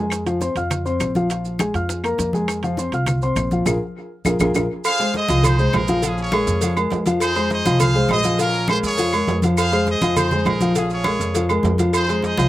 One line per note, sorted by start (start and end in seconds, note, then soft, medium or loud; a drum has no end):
0.00 0.50 F2 medium
0.00 0.21 G#3 medium
0.00 0.21 G#4 medium
0.00 0.22 G#5 medium
0.10 high bongo medium
0.10 high conga soft
0.10 high timbale loud
0.10 claves medium
0.10 maracas medium
0.26 0.38 F3 medium
0.26 0.38 F4 medium
0.26 0.39 F5 medium
0.26 high bongo soft
0.26 high conga soft
0.26 high timbale medium
0.26 maracas soft
0.41 0.53 C4 medium
0.41 0.53 C5 medium
0.41 0.54 C6 medium
0.41 high bongo medium
0.41 high conga medium
0.41 maracas medium
0.55 0.97 F2 loud
0.55 0.81 F4 medium
0.55 0.81 F5 medium
0.55 0.81 F6 medium
0.55 high bongo soft
0.55 high timbale medium
0.55 maracas soft
0.70 high bongo medium
0.70 high conga soft
0.70 low conga medium
0.70 high timbale medium
0.70 claves medium
0.70 maracas medium
0.85 1.10 C4 medium
0.85 1.10 C5 medium
0.85 1.10 C6 medium
0.85 high bongo soft
0.85 high conga soft
0.85 maracas soft
1.00 1.69 A#1 medium
1.00 high bongo soft
1.00 low bongo medium
1.00 high conga medium
1.00 high timbale medium
1.00 claves medium
1.00 maracas medium
1.15 1.28 F3 medium
1.15 1.28 F4 medium
1.15 1.28 F5 medium
1.15 high conga medium
1.15 maracas soft
1.30 1.55 F3 medium
1.30 1.55 F4 medium
1.30 1.55 F5 medium
1.30 high bongo medium
1.30 high conga soft
1.30 high timbale medium
1.30 maracas medium
1.45 high bongo soft
1.45 high conga soft
1.45 maracas soft
1.59 1.72 G#3 medium
1.59 1.72 G#4 medium
1.59 1.72 G#5 medium
1.59 high bongo medium
1.59 high conga loud
1.59 high timbale medium
1.59 claves medium
1.59 maracas medium
1.74 2.15 F2 medium
1.74 1.99 F4 medium
1.74 1.99 F5 medium
1.74 1.99 F6 medium
1.74 high bongo soft
1.74 high timbale medium
1.74 maracas soft
1.89 high bongo medium
1.89 high conga soft
1.89 maracas medium
2.04 2.28 A#3 medium
2.04 2.28 A#4 medium
2.04 2.28 A#5 medium
2.04 high bongo soft
2.04 high conga soft
2.04 high timbale medium
2.04 claves medium
2.04 maracas soft
2.18 2.87 F2 medium
2.18 high bongo soft
2.18 low bongo medium
2.18 high conga medium
2.18 high timbale medium
2.18 maracas medium
2.33 2.58 G#3 medium
2.33 2.58 G#4 medium
2.33 2.58 G#5 medium
2.33 high conga medium
2.33 maracas soft
2.48 high bongo medium
2.48 high conga soft
2.48 high timbale loud
2.48 claves medium
2.48 maracas medium
2.63 2.75 F3 medium
2.63 2.75 F4 medium
2.63 2.76 F5 medium
2.63 high bongo soft
2.63 high conga soft
2.63 high timbale medium
2.63 maracas soft
2.77 2.90 C4 medium
2.77 2.91 C5 medium
2.77 2.91 C6 medium
2.77 high bongo medium
2.77 high conga medium
2.77 maracas medium
2.92 3.34 C2 medium
2.92 3.17 F4 medium
2.92 3.18 F5 medium
2.92 3.18 F6 medium
2.92 high bongo soft
2.92 high timbale medium
2.92 maracas soft
3.06 high bongo medium
3.06 high conga soft
3.06 low conga medium
3.06 high timbale medium
3.06 claves medium
3.06 maracas medium
3.21 3.47 C4 medium
3.21 3.47 C5 medium
3.21 3.47 C6 medium
3.21 high bongo soft
3.21 high conga soft
3.21 maracas soft
3.36 3.64 A#1 loud
3.36 high bongo soft
3.36 low bongo medium
3.36 high conga medium
3.36 high timbale loud
3.36 claves medium
3.36 maracas medium
3.51 3.64 F3 medium
3.51 3.64 F4 medium
3.51 3.65 F5 medium
3.51 high conga medium
3.51 maracas soft
3.66 3.77 A#1 loud
3.66 3.76 F4 medium
3.66 3.76 G#4 medium
3.66 3.76 A#4 medium
3.66 low bongo loud
3.66 high conga medium
3.66 high timbale loud
3.66 claves loud
3.66 maracas loud
4.25 4.36 A#1 medium
4.25 4.35 F4 medium
4.25 4.36 G#4 medium
4.25 4.35 A#4 medium
4.25 low bongo loud
4.25 high conga loud
4.25 high timbale loud
4.25 claves loud
4.25 maracas loud
4.40 4.51 A#1 loud
4.40 4.50 F4 loud
4.40 4.50 G#4 loud
4.40 4.50 A#4 medium
4.40 low bongo medium
4.40 high conga loud
4.40 high timbale loud
4.40 claves loud
4.40 maracas loud
4.54 4.66 A#1 medium
4.54 4.65 F4 medium
4.54 4.65 G#4 medium
4.54 4.65 A#4 loud
4.54 low bongo medium
4.54 high conga loud
4.54 high timbale loud
4.54 claves loud
4.54 maracas loud
4.84 5.15 G#4 medium
4.84 5.14 C5 medium
4.84 5.13 F5 loud
4.84 cowbell loud
4.84 high conga soft
4.84 low agogo loud
4.84 claves medium
4.84 maracas loud
4.99 5.24 G#3 medium
4.99 5.24 G#4 medium
4.99 5.24 C5 medium
4.99 cowbell medium
4.99 high conga soft
4.99 low agogo medium
4.99 maracas soft
5.14 5.44 G#4 medium
5.14 5.44 C5 medium
5.14 5.42 D#5 loud
5.14 cowbell medium
5.14 high conga medium
5.14 low timbale medium
5.14 maracas soft
5.29 5.71 C2 loud
5.29 5.53 F3 medium
5.29 5.54 F4 medium
5.29 5.54 F5 medium
5.29 cowbell medium
5.29 high conga medium
5.29 low agogo medium
5.29 maracas medium
5.43 5.75 D#4 medium
5.43 6.00 G#4 medium
5.43 5.74 C5 loud
5.43 cowbell loud
5.43 high conga soft
5.43 low conga medium
5.43 low agogo loud
5.43 claves medium
5.43 maracas loud
5.59 5.83 G#3 medium
5.59 5.83 G#4 medium
5.59 5.84 C5 medium
5.59 high conga soft
5.59 maracas soft
5.73 6.42 A#1 loud
5.73 6.02 D#4 medium
5.73 6.04 A#4 loud
5.73 cowbell medium
5.73 high conga medium
5.73 low timbale medium
5.73 low agogo loud
5.73 claves medium
5.73 maracas soft
5.88 6.01 F3 loud
5.88 6.01 F4 medium
5.88 6.01 F5 medium
5.88 cowbell medium
5.88 high conga loud
5.88 maracas medium
6.02 6.28 F3 medium
6.02 6.60 C#4 medium
6.02 6.28 F4 medium
6.02 6.18 F4 medium
6.02 6.18 G#4 medium
6.02 6.28 F5 medium
6.02 cowbell loud
6.02 high conga soft
6.02 low agogo medium
6.02 maracas loud
6.18 6.74 F4 medium
6.18 6.74 G#4 medium
6.18 6.74 C#5 medium
6.18 high conga soft
6.18 maracas soft
6.32 6.57 G#3 medium
6.32 6.57 G#4 medium
6.32 6.57 A#4 medium
6.32 cowbell medium
6.32 high conga loud
6.32 low timbale medium
6.32 low agogo loud
6.32 claves medium
6.32 maracas soft
6.47 6.89 F2 loud
6.47 cowbell medium
6.47 high conga soft
6.47 maracas medium
6.61 6.74 F3 medium
6.61 6.75 F4 medium
6.61 6.75 F5 medium
6.61 cowbell loud
6.61 high conga soft
6.61 low agogo medium
6.61 maracas loud
6.77 7.01 G#3 medium
6.77 7.01 G#4 medium
6.77 7.01 A#4 medium
6.77 high conga soft
6.77 low agogo loud
6.77 claves medium
6.77 maracas soft
6.90 7.60 F2 medium
6.90 cowbell medium
6.90 high conga medium
6.90 low timbale medium
6.90 maracas soft
7.06 7.31 F3 medium
7.06 7.31 F4 medium
7.06 7.31 F5 medium
7.06 cowbell medium
7.06 high conga medium
7.06 low agogo medium
7.06 maracas medium
7.20 7.77 D#4 medium
7.20 7.50 G#4 medium
7.20 7.49 C5 loud
7.20 cowbell loud
7.20 low agogo loud
7.20 claves medium
7.20 maracas loud
7.36 7.60 G#3 medium
7.36 7.60 G#4 medium
7.36 7.61 C5 medium
7.36 cowbell medium
7.36 high conga soft
7.36 low agogo medium
7.36 maracas soft
7.50 7.80 G#4 medium
7.50 7.80 C5 medium
7.50 7.78 D#5 loud
7.50 cowbell medium
7.50 high conga medium
7.50 low timbale medium
7.50 maracas soft
7.65 8.07 C2 loud
7.65 7.90 F3 medium
7.65 7.90 F4 loud
7.65 7.90 F5 medium
7.65 cowbell medium
7.65 high conga loud
7.65 low agogo medium
7.65 maracas medium
7.80 8.10 G#4 medium
7.80 8.10 C5 medium
7.80 8.10 F5 loud
7.80 cowbell loud
7.80 high conga soft
7.80 low conga medium
7.80 low agogo loud
7.80 claves medium
7.80 maracas loud
7.95 8.19 G#3 medium
7.95 8.19 G#4 medium
7.95 8.20 C5 medium
7.95 high conga soft
7.95 maracas soft
8.09 8.78 A#1 medium
8.09 8.38 G#4 medium
8.09 8.38 C5 medium
8.09 8.37 D#5 loud
8.09 cowbell medium
8.09 high conga medium
8.09 low timbale medium
8.09 low agogo loud
8.09 claves medium
8.09 maracas soft
8.24 8.37 F3 medium
8.24 8.37 F4 medium
8.24 8.37 F5 medium
8.24 cowbell medium
8.24 high conga loud
8.24 maracas medium
8.38 8.64 F3 medium
8.38 8.96 C#4 medium
8.38 8.64 F4 medium
8.38 8.83 F4 medium
8.38 8.68 A#4 loud
8.38 8.64 F5 medium
8.38 cowbell loud
8.38 high conga soft
8.38 low agogo medium
8.38 maracas medium
8.54 high conga soft
8.54 maracas soft
8.68 8.93 G#3 medium
8.68 8.94 G#4 medium
8.68 8.94 A#4 medium
8.68 8.76 C5 loud
8.68 cowbell medium
8.68 high conga medium
8.68 low timbale medium
8.68 low agogo loud
8.68 claves medium
8.68 maracas soft
8.83 9.25 F2 loud
8.83 9.39 F4 medium
8.83 9.39 G#4 medium
8.83 9.39 C#5 loud
8.83 cowbell medium
8.83 high conga soft
8.83 maracas medium
8.98 9.11 F3 medium
8.98 9.11 F4 medium
8.98 9.11 F5 medium
8.98 cowbell loud
8.98 high conga soft
8.98 low agogo medium
8.98 maracas loud
9.13 9.37 G#3 medium
9.13 9.38 G#4 medium
9.13 9.38 A#4 medium
9.13 high conga soft
9.13 low agogo loud
9.13 claves medium
9.13 maracas soft
9.27 9.96 F2 loud
9.27 cowbell medium
9.27 high conga medium
9.27 low timbale medium
9.27 maracas soft
9.42 9.67 F3 medium
9.42 9.68 F4 medium
9.42 9.68 F5 medium
9.42 cowbell medium
9.42 high conga medium
9.42 low agogo medium
9.42 maracas medium
9.57 9.88 G#4 medium
9.57 9.88 C5 medium
9.57 9.85 F5 loud
9.57 cowbell loud
9.57 low agogo loud
9.57 claves medium
9.57 maracas loud
9.72 9.96 G#3 medium
9.72 9.97 G#4 medium
9.72 9.97 C5 medium
9.72 cowbell medium
9.72 high conga soft
9.72 low agogo medium
9.72 maracas soft
9.87 10.16 G#4 medium
9.87 10.16 C5 medium
9.87 10.16 D#5 medium
9.87 cowbell medium
9.87 high conga medium
9.87 low timbale medium
9.87 maracas soft
10.01 10.43 F2 loud
10.01 10.27 F3 medium
10.01 10.27 F4 medium
10.01 10.27 F5 medium
10.01 cowbell medium
10.01 high conga loud
10.01 low agogo medium
10.01 maracas medium
10.17 10.45 D#4 medium
10.17 10.72 G#4 medium
10.17 10.45 C5 medium
10.17 cowbell loud
10.17 high conga soft
10.17 low conga medium
10.17 low agogo loud
10.17 claves medium
10.17 maracas loud
10.31 10.56 G#3 medium
10.31 10.56 G#4 medium
10.31 10.56 C5 medium
10.31 high conga soft
10.31 low conga medium
10.31 maracas soft
10.45 11.14 A#1 medium
10.45 10.74 D#4 medium
10.45 10.74 A#4 medium
10.45 cowbell medium
10.45 high conga medium
10.45 low timbale medium
10.45 low agogo loud
10.45 claves medium
10.45 maracas soft
10.60 10.73 F3 medium
10.60 10.73 F4 medium
10.60 10.74 F5 medium
10.60 cowbell medium
10.60 high conga medium
10.60 maracas medium
10.75 11.00 F3 medium
10.75 11.31 C#4 medium
10.75 10.90 F4 medium
10.75 11.00 F4 medium
10.75 10.90 G#4 medium
10.75 11.01 F5 medium
10.75 cowbell loud
10.75 low agogo medium
10.75 maracas loud
10.90 11.46 F4 medium
10.90 11.46 G#4 medium
10.90 11.47 C#5 medium
10.90 high conga soft
10.90 maracas soft
11.04 11.30 G#3 medium
11.04 11.30 G#4 medium
11.04 11.31 A#4 medium
11.04 cowbell medium
11.04 high conga medium
11.04 low timbale medium
11.04 low agogo loud
11.04 claves medium
11.04 maracas soft
11.19 11.61 F2 loud
11.19 cowbell medium
11.19 high conga soft
11.19 maracas medium
11.34 11.48 F3 medium
11.34 11.48 F4 medium
11.34 11.48 F5 medium
11.34 cowbell loud
11.34 high conga soft
11.34 low agogo medium
11.34 maracas medium
11.49 11.74 G#3 medium
11.49 11.74 G#4 medium
11.49 11.74 A#4 medium
11.49 high conga soft
11.49 low agogo loud
11.49 claves medium
11.49 maracas soft
11.63 12.32 F2 medium
11.63 cowbell medium
11.63 high conga medium
11.63 low timbale medium
11.63 maracas soft
11.78 12.03 F3 medium
11.78 12.04 F4 medium
11.78 12.04 F5 medium
11.78 cowbell medium
11.78 high conga medium
11.78 low agogo medium
11.78 maracas medium
11.93 12.49 D#4 medium
11.93 12.24 G#4 medium
11.93 12.22 C5 loud
11.93 cowbell loud
11.93 low agogo loud
11.93 claves medium
11.93 maracas loud
12.08 12.33 G#3 medium
12.08 12.33 G#4 medium
12.08 12.33 C5 medium
12.08 cowbell medium
12.08 high conga soft
12.08 low agogo medium
12.08 maracas soft
12.23 12.49 G#4 medium
12.23 12.49 C5 medium
12.23 12.49 D#5 loud
12.23 cowbell medium
12.23 high conga medium
12.23 low timbale medium
12.23 maracas soft
12.37 12.49 C2 loud
12.37 12.49 F3 medium
12.37 12.49 F4 medium
12.37 12.49 F5 medium
12.37 cowbell medium
12.37 high conga loud
12.37 low agogo medium
12.37 maracas medium